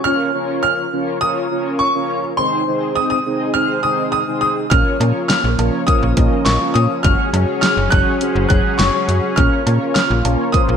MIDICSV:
0, 0, Header, 1, 6, 480
1, 0, Start_track
1, 0, Tempo, 582524
1, 45, Time_signature, 4, 2, 24, 8
1, 8873, End_track
2, 0, Start_track
2, 0, Title_t, "Grand piano"
2, 0, Program_c, 0, 0
2, 34, Note_on_c, 0, 89, 112
2, 487, Note_off_c, 0, 89, 0
2, 516, Note_on_c, 0, 89, 107
2, 996, Note_on_c, 0, 87, 105
2, 1015, Note_off_c, 0, 89, 0
2, 1475, Note_on_c, 0, 85, 97
2, 1495, Note_off_c, 0, 87, 0
2, 1814, Note_off_c, 0, 85, 0
2, 1954, Note_on_c, 0, 84, 102
2, 2435, Note_on_c, 0, 87, 99
2, 2455, Note_off_c, 0, 84, 0
2, 2542, Note_off_c, 0, 87, 0
2, 2555, Note_on_c, 0, 87, 95
2, 2894, Note_off_c, 0, 87, 0
2, 2915, Note_on_c, 0, 89, 108
2, 3156, Note_on_c, 0, 87, 93
2, 3167, Note_off_c, 0, 89, 0
2, 3382, Note_off_c, 0, 87, 0
2, 3394, Note_on_c, 0, 87, 96
2, 3621, Note_off_c, 0, 87, 0
2, 3634, Note_on_c, 0, 87, 98
2, 3873, Note_on_c, 0, 89, 107
2, 3887, Note_off_c, 0, 87, 0
2, 4341, Note_off_c, 0, 89, 0
2, 4354, Note_on_c, 0, 89, 99
2, 4834, Note_on_c, 0, 87, 102
2, 4854, Note_off_c, 0, 89, 0
2, 5287, Note_off_c, 0, 87, 0
2, 5312, Note_on_c, 0, 85, 90
2, 5553, Note_on_c, 0, 87, 96
2, 5566, Note_off_c, 0, 85, 0
2, 5609, Note_off_c, 0, 87, 0
2, 5793, Note_on_c, 0, 89, 103
2, 6260, Note_off_c, 0, 89, 0
2, 6273, Note_on_c, 0, 89, 99
2, 6513, Note_on_c, 0, 90, 112
2, 6526, Note_off_c, 0, 89, 0
2, 6980, Note_off_c, 0, 90, 0
2, 6992, Note_on_c, 0, 90, 91
2, 7233, Note_on_c, 0, 85, 90
2, 7246, Note_off_c, 0, 90, 0
2, 7713, Note_on_c, 0, 89, 103
2, 7734, Note_off_c, 0, 85, 0
2, 8166, Note_off_c, 0, 89, 0
2, 8193, Note_on_c, 0, 89, 98
2, 8672, Note_on_c, 0, 87, 98
2, 8694, Note_off_c, 0, 89, 0
2, 8873, Note_off_c, 0, 87, 0
2, 8873, End_track
3, 0, Start_track
3, 0, Title_t, "Analog polysynth"
3, 0, Program_c, 1, 90
3, 46, Note_on_c, 1, 61, 79
3, 46, Note_on_c, 1, 70, 73
3, 46, Note_on_c, 1, 73, 88
3, 47, Note_on_c, 1, 65, 75
3, 256, Note_off_c, 1, 61, 0
3, 256, Note_off_c, 1, 65, 0
3, 256, Note_off_c, 1, 70, 0
3, 256, Note_off_c, 1, 73, 0
3, 286, Note_on_c, 1, 61, 78
3, 286, Note_on_c, 1, 65, 72
3, 286, Note_on_c, 1, 70, 73
3, 286, Note_on_c, 1, 73, 85
3, 706, Note_off_c, 1, 61, 0
3, 706, Note_off_c, 1, 65, 0
3, 706, Note_off_c, 1, 70, 0
3, 706, Note_off_c, 1, 73, 0
3, 766, Note_on_c, 1, 61, 78
3, 766, Note_on_c, 1, 65, 73
3, 766, Note_on_c, 1, 73, 85
3, 767, Note_on_c, 1, 70, 73
3, 976, Note_off_c, 1, 61, 0
3, 976, Note_off_c, 1, 65, 0
3, 976, Note_off_c, 1, 70, 0
3, 976, Note_off_c, 1, 73, 0
3, 1007, Note_on_c, 1, 61, 75
3, 1007, Note_on_c, 1, 65, 72
3, 1007, Note_on_c, 1, 70, 70
3, 1007, Note_on_c, 1, 73, 85
3, 1216, Note_off_c, 1, 61, 0
3, 1216, Note_off_c, 1, 65, 0
3, 1216, Note_off_c, 1, 70, 0
3, 1216, Note_off_c, 1, 73, 0
3, 1246, Note_on_c, 1, 61, 78
3, 1246, Note_on_c, 1, 65, 73
3, 1246, Note_on_c, 1, 70, 75
3, 1246, Note_on_c, 1, 73, 88
3, 1561, Note_off_c, 1, 61, 0
3, 1561, Note_off_c, 1, 65, 0
3, 1561, Note_off_c, 1, 70, 0
3, 1561, Note_off_c, 1, 73, 0
3, 1606, Note_on_c, 1, 61, 80
3, 1606, Note_on_c, 1, 65, 70
3, 1606, Note_on_c, 1, 70, 70
3, 1606, Note_on_c, 1, 73, 88
3, 1921, Note_off_c, 1, 61, 0
3, 1921, Note_off_c, 1, 65, 0
3, 1921, Note_off_c, 1, 70, 0
3, 1921, Note_off_c, 1, 73, 0
3, 1965, Note_on_c, 1, 63, 73
3, 1965, Note_on_c, 1, 72, 87
3, 1966, Note_on_c, 1, 60, 81
3, 1966, Note_on_c, 1, 68, 70
3, 2176, Note_off_c, 1, 60, 0
3, 2176, Note_off_c, 1, 63, 0
3, 2176, Note_off_c, 1, 68, 0
3, 2176, Note_off_c, 1, 72, 0
3, 2205, Note_on_c, 1, 60, 77
3, 2205, Note_on_c, 1, 63, 73
3, 2205, Note_on_c, 1, 68, 72
3, 2205, Note_on_c, 1, 72, 85
3, 2626, Note_off_c, 1, 60, 0
3, 2626, Note_off_c, 1, 63, 0
3, 2626, Note_off_c, 1, 68, 0
3, 2626, Note_off_c, 1, 72, 0
3, 2686, Note_on_c, 1, 60, 78
3, 2686, Note_on_c, 1, 63, 71
3, 2686, Note_on_c, 1, 68, 72
3, 2686, Note_on_c, 1, 75, 88
3, 2896, Note_off_c, 1, 60, 0
3, 2896, Note_off_c, 1, 63, 0
3, 2896, Note_off_c, 1, 68, 0
3, 2896, Note_off_c, 1, 75, 0
3, 2926, Note_on_c, 1, 60, 76
3, 2926, Note_on_c, 1, 63, 72
3, 2926, Note_on_c, 1, 72, 85
3, 3136, Note_off_c, 1, 60, 0
3, 3136, Note_off_c, 1, 63, 0
3, 3136, Note_off_c, 1, 72, 0
3, 3165, Note_on_c, 1, 68, 71
3, 3165, Note_on_c, 1, 72, 85
3, 3166, Note_on_c, 1, 60, 81
3, 3166, Note_on_c, 1, 63, 74
3, 3481, Note_off_c, 1, 60, 0
3, 3481, Note_off_c, 1, 63, 0
3, 3481, Note_off_c, 1, 68, 0
3, 3481, Note_off_c, 1, 72, 0
3, 3524, Note_on_c, 1, 60, 80
3, 3524, Note_on_c, 1, 68, 73
3, 3524, Note_on_c, 1, 72, 86
3, 3525, Note_on_c, 1, 63, 72
3, 3840, Note_off_c, 1, 60, 0
3, 3840, Note_off_c, 1, 68, 0
3, 3840, Note_off_c, 1, 72, 0
3, 3841, Note_off_c, 1, 63, 0
3, 3885, Note_on_c, 1, 61, 78
3, 3886, Note_on_c, 1, 65, 74
3, 3886, Note_on_c, 1, 70, 72
3, 3886, Note_on_c, 1, 73, 86
3, 4096, Note_off_c, 1, 61, 0
3, 4096, Note_off_c, 1, 65, 0
3, 4096, Note_off_c, 1, 70, 0
3, 4096, Note_off_c, 1, 73, 0
3, 4124, Note_on_c, 1, 70, 72
3, 4125, Note_on_c, 1, 61, 79
3, 4125, Note_on_c, 1, 65, 72
3, 4125, Note_on_c, 1, 73, 86
3, 4546, Note_off_c, 1, 61, 0
3, 4546, Note_off_c, 1, 65, 0
3, 4546, Note_off_c, 1, 70, 0
3, 4546, Note_off_c, 1, 73, 0
3, 4605, Note_on_c, 1, 61, 76
3, 4605, Note_on_c, 1, 65, 72
3, 4605, Note_on_c, 1, 70, 70
3, 4605, Note_on_c, 1, 73, 89
3, 4816, Note_off_c, 1, 61, 0
3, 4816, Note_off_c, 1, 65, 0
3, 4816, Note_off_c, 1, 70, 0
3, 4816, Note_off_c, 1, 73, 0
3, 4844, Note_on_c, 1, 70, 70
3, 4844, Note_on_c, 1, 73, 85
3, 4845, Note_on_c, 1, 61, 76
3, 4845, Note_on_c, 1, 65, 67
3, 5055, Note_off_c, 1, 61, 0
3, 5055, Note_off_c, 1, 65, 0
3, 5055, Note_off_c, 1, 70, 0
3, 5055, Note_off_c, 1, 73, 0
3, 5084, Note_on_c, 1, 65, 71
3, 5085, Note_on_c, 1, 61, 83
3, 5085, Note_on_c, 1, 70, 73
3, 5085, Note_on_c, 1, 75, 88
3, 5400, Note_off_c, 1, 65, 0
3, 5400, Note_off_c, 1, 75, 0
3, 5401, Note_off_c, 1, 61, 0
3, 5401, Note_off_c, 1, 70, 0
3, 5445, Note_on_c, 1, 61, 79
3, 5445, Note_on_c, 1, 65, 72
3, 5445, Note_on_c, 1, 70, 73
3, 5445, Note_on_c, 1, 73, 88
3, 5760, Note_off_c, 1, 73, 0
3, 5761, Note_off_c, 1, 61, 0
3, 5761, Note_off_c, 1, 65, 0
3, 5761, Note_off_c, 1, 70, 0
3, 5805, Note_on_c, 1, 61, 80
3, 5805, Note_on_c, 1, 66, 70
3, 5805, Note_on_c, 1, 68, 71
3, 5805, Note_on_c, 1, 73, 89
3, 6015, Note_off_c, 1, 61, 0
3, 6015, Note_off_c, 1, 66, 0
3, 6016, Note_off_c, 1, 68, 0
3, 6016, Note_off_c, 1, 73, 0
3, 6045, Note_on_c, 1, 61, 78
3, 6045, Note_on_c, 1, 66, 71
3, 6045, Note_on_c, 1, 68, 75
3, 6045, Note_on_c, 1, 73, 88
3, 6466, Note_off_c, 1, 61, 0
3, 6466, Note_off_c, 1, 66, 0
3, 6466, Note_off_c, 1, 68, 0
3, 6466, Note_off_c, 1, 73, 0
3, 6525, Note_on_c, 1, 61, 77
3, 6525, Note_on_c, 1, 66, 75
3, 6525, Note_on_c, 1, 68, 74
3, 6525, Note_on_c, 1, 73, 84
3, 6735, Note_off_c, 1, 66, 0
3, 6735, Note_off_c, 1, 68, 0
3, 6736, Note_off_c, 1, 61, 0
3, 6736, Note_off_c, 1, 73, 0
3, 6765, Note_on_c, 1, 61, 75
3, 6765, Note_on_c, 1, 68, 68
3, 6766, Note_on_c, 1, 66, 70
3, 6766, Note_on_c, 1, 72, 84
3, 6976, Note_off_c, 1, 61, 0
3, 6976, Note_off_c, 1, 66, 0
3, 6976, Note_off_c, 1, 68, 0
3, 6976, Note_off_c, 1, 72, 0
3, 7005, Note_on_c, 1, 61, 80
3, 7005, Note_on_c, 1, 66, 74
3, 7005, Note_on_c, 1, 68, 74
3, 7005, Note_on_c, 1, 73, 88
3, 7321, Note_off_c, 1, 61, 0
3, 7321, Note_off_c, 1, 66, 0
3, 7321, Note_off_c, 1, 68, 0
3, 7321, Note_off_c, 1, 73, 0
3, 7365, Note_on_c, 1, 61, 79
3, 7365, Note_on_c, 1, 68, 74
3, 7365, Note_on_c, 1, 73, 85
3, 7366, Note_on_c, 1, 66, 72
3, 7681, Note_off_c, 1, 61, 0
3, 7681, Note_off_c, 1, 66, 0
3, 7681, Note_off_c, 1, 68, 0
3, 7681, Note_off_c, 1, 73, 0
3, 7725, Note_on_c, 1, 61, 78
3, 7725, Note_on_c, 1, 65, 74
3, 7725, Note_on_c, 1, 70, 74
3, 7725, Note_on_c, 1, 73, 86
3, 7935, Note_off_c, 1, 61, 0
3, 7935, Note_off_c, 1, 65, 0
3, 7935, Note_off_c, 1, 70, 0
3, 7936, Note_off_c, 1, 73, 0
3, 7965, Note_on_c, 1, 61, 80
3, 7965, Note_on_c, 1, 73, 90
3, 7966, Note_on_c, 1, 65, 74
3, 7966, Note_on_c, 1, 70, 72
3, 8386, Note_off_c, 1, 61, 0
3, 8386, Note_off_c, 1, 65, 0
3, 8386, Note_off_c, 1, 70, 0
3, 8386, Note_off_c, 1, 73, 0
3, 8445, Note_on_c, 1, 65, 74
3, 8445, Note_on_c, 1, 70, 70
3, 8445, Note_on_c, 1, 73, 85
3, 8446, Note_on_c, 1, 61, 81
3, 8656, Note_off_c, 1, 61, 0
3, 8656, Note_off_c, 1, 65, 0
3, 8656, Note_off_c, 1, 70, 0
3, 8656, Note_off_c, 1, 73, 0
3, 8686, Note_on_c, 1, 61, 76
3, 8686, Note_on_c, 1, 65, 70
3, 8686, Note_on_c, 1, 70, 73
3, 8686, Note_on_c, 1, 72, 86
3, 8873, Note_off_c, 1, 61, 0
3, 8873, Note_off_c, 1, 65, 0
3, 8873, Note_off_c, 1, 70, 0
3, 8873, Note_off_c, 1, 72, 0
3, 8873, End_track
4, 0, Start_track
4, 0, Title_t, "Analog synth pad"
4, 0, Program_c, 2, 89
4, 3885, Note_on_c, 2, 53, 84
4, 3885, Note_on_c, 2, 58, 78
4, 3885, Note_on_c, 2, 61, 91
4, 5786, Note_off_c, 2, 53, 0
4, 5786, Note_off_c, 2, 58, 0
4, 5805, Note_on_c, 2, 68, 92
4, 5806, Note_on_c, 2, 54, 84
4, 7706, Note_off_c, 2, 68, 0
4, 7707, Note_off_c, 2, 54, 0
4, 7725, Note_on_c, 2, 58, 86
4, 7725, Note_on_c, 2, 65, 91
4, 8873, Note_off_c, 2, 58, 0
4, 8873, Note_off_c, 2, 61, 0
4, 8873, Note_off_c, 2, 65, 0
4, 8873, End_track
5, 0, Start_track
5, 0, Title_t, "FM bass"
5, 0, Program_c, 3, 39
5, 3885, Note_on_c, 3, 34, 111
5, 3984, Note_off_c, 3, 34, 0
5, 4124, Note_on_c, 3, 46, 109
5, 4223, Note_off_c, 3, 46, 0
5, 4484, Note_on_c, 3, 34, 92
5, 4583, Note_off_c, 3, 34, 0
5, 4604, Note_on_c, 3, 34, 99
5, 4703, Note_off_c, 3, 34, 0
5, 4965, Note_on_c, 3, 34, 92
5, 5064, Note_off_c, 3, 34, 0
5, 5085, Note_on_c, 3, 34, 113
5, 5183, Note_off_c, 3, 34, 0
5, 5325, Note_on_c, 3, 34, 102
5, 5423, Note_off_c, 3, 34, 0
5, 5565, Note_on_c, 3, 46, 101
5, 5664, Note_off_c, 3, 46, 0
5, 5805, Note_on_c, 3, 30, 106
5, 5904, Note_off_c, 3, 30, 0
5, 6045, Note_on_c, 3, 42, 112
5, 6143, Note_off_c, 3, 42, 0
5, 6404, Note_on_c, 3, 30, 95
5, 6503, Note_off_c, 3, 30, 0
5, 6528, Note_on_c, 3, 30, 107
5, 6625, Note_off_c, 3, 30, 0
5, 6885, Note_on_c, 3, 30, 102
5, 6983, Note_off_c, 3, 30, 0
5, 7006, Note_on_c, 3, 30, 103
5, 7104, Note_off_c, 3, 30, 0
5, 7244, Note_on_c, 3, 30, 106
5, 7343, Note_off_c, 3, 30, 0
5, 7486, Note_on_c, 3, 42, 94
5, 7584, Note_off_c, 3, 42, 0
5, 7726, Note_on_c, 3, 34, 112
5, 7824, Note_off_c, 3, 34, 0
5, 7966, Note_on_c, 3, 46, 102
5, 8064, Note_off_c, 3, 46, 0
5, 8326, Note_on_c, 3, 34, 95
5, 8424, Note_off_c, 3, 34, 0
5, 8445, Note_on_c, 3, 34, 101
5, 8544, Note_off_c, 3, 34, 0
5, 8805, Note_on_c, 3, 34, 100
5, 8873, Note_off_c, 3, 34, 0
5, 8873, End_track
6, 0, Start_track
6, 0, Title_t, "Drums"
6, 3885, Note_on_c, 9, 36, 106
6, 3885, Note_on_c, 9, 42, 76
6, 3967, Note_off_c, 9, 42, 0
6, 3968, Note_off_c, 9, 36, 0
6, 4125, Note_on_c, 9, 56, 69
6, 4127, Note_on_c, 9, 42, 75
6, 4207, Note_off_c, 9, 56, 0
6, 4209, Note_off_c, 9, 42, 0
6, 4365, Note_on_c, 9, 38, 120
6, 4365, Note_on_c, 9, 42, 78
6, 4447, Note_off_c, 9, 38, 0
6, 4448, Note_off_c, 9, 42, 0
6, 4605, Note_on_c, 9, 42, 78
6, 4606, Note_on_c, 9, 56, 66
6, 4687, Note_off_c, 9, 42, 0
6, 4689, Note_off_c, 9, 56, 0
6, 4844, Note_on_c, 9, 36, 94
6, 4845, Note_on_c, 9, 42, 73
6, 4927, Note_off_c, 9, 36, 0
6, 4928, Note_off_c, 9, 42, 0
6, 5084, Note_on_c, 9, 42, 70
6, 5085, Note_on_c, 9, 36, 102
6, 5166, Note_off_c, 9, 42, 0
6, 5167, Note_off_c, 9, 36, 0
6, 5323, Note_on_c, 9, 42, 71
6, 5326, Note_on_c, 9, 38, 123
6, 5405, Note_off_c, 9, 42, 0
6, 5408, Note_off_c, 9, 38, 0
6, 5567, Note_on_c, 9, 42, 63
6, 5649, Note_off_c, 9, 42, 0
6, 5805, Note_on_c, 9, 36, 111
6, 5805, Note_on_c, 9, 42, 77
6, 5887, Note_off_c, 9, 42, 0
6, 5888, Note_off_c, 9, 36, 0
6, 6044, Note_on_c, 9, 56, 67
6, 6046, Note_on_c, 9, 42, 74
6, 6126, Note_off_c, 9, 56, 0
6, 6128, Note_off_c, 9, 42, 0
6, 6285, Note_on_c, 9, 38, 117
6, 6285, Note_on_c, 9, 42, 77
6, 6367, Note_off_c, 9, 38, 0
6, 6367, Note_off_c, 9, 42, 0
6, 6526, Note_on_c, 9, 42, 75
6, 6527, Note_on_c, 9, 56, 68
6, 6528, Note_on_c, 9, 36, 96
6, 6608, Note_off_c, 9, 42, 0
6, 6609, Note_off_c, 9, 56, 0
6, 6610, Note_off_c, 9, 36, 0
6, 6765, Note_on_c, 9, 42, 74
6, 6847, Note_off_c, 9, 42, 0
6, 7004, Note_on_c, 9, 42, 70
6, 7005, Note_on_c, 9, 36, 99
6, 7086, Note_off_c, 9, 42, 0
6, 7088, Note_off_c, 9, 36, 0
6, 7244, Note_on_c, 9, 42, 71
6, 7247, Note_on_c, 9, 38, 122
6, 7327, Note_off_c, 9, 42, 0
6, 7330, Note_off_c, 9, 38, 0
6, 7488, Note_on_c, 9, 42, 63
6, 7571, Note_off_c, 9, 42, 0
6, 7725, Note_on_c, 9, 42, 77
6, 7726, Note_on_c, 9, 36, 108
6, 7808, Note_off_c, 9, 36, 0
6, 7808, Note_off_c, 9, 42, 0
6, 7964, Note_on_c, 9, 56, 68
6, 7966, Note_on_c, 9, 42, 77
6, 8047, Note_off_c, 9, 56, 0
6, 8049, Note_off_c, 9, 42, 0
6, 8205, Note_on_c, 9, 38, 117
6, 8206, Note_on_c, 9, 42, 80
6, 8288, Note_off_c, 9, 38, 0
6, 8288, Note_off_c, 9, 42, 0
6, 8446, Note_on_c, 9, 42, 79
6, 8447, Note_on_c, 9, 56, 67
6, 8528, Note_off_c, 9, 42, 0
6, 8529, Note_off_c, 9, 56, 0
6, 8684, Note_on_c, 9, 36, 93
6, 8686, Note_on_c, 9, 42, 74
6, 8767, Note_off_c, 9, 36, 0
6, 8768, Note_off_c, 9, 42, 0
6, 8873, End_track
0, 0, End_of_file